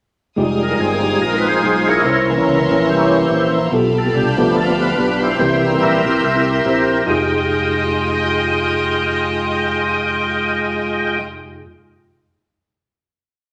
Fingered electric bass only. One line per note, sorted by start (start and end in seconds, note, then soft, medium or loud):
0.37 0.73 F1 medium
0.79 1.15 G1 medium
1.21 1.57 A#1 medium
1.63 1.99 B1 medium
2.04 2.40 C2 medium
2.47 2.67 C#2 medium
2.71 2.86 A#1 medium
2.89 3.24 C2 medium
3.30 3.66 A#1 medium
3.72 4.08 B1 medium
4.14 4.50 C2 medium
4.55 4.91 D2 medium
4.98 5.33 B1 medium
5.39 5.75 C2 medium
5.81 6.17 A#1 medium
6.24 6.59 C2 medium
6.65 7.01 A#1 medium
7.07 11.62 F1 medium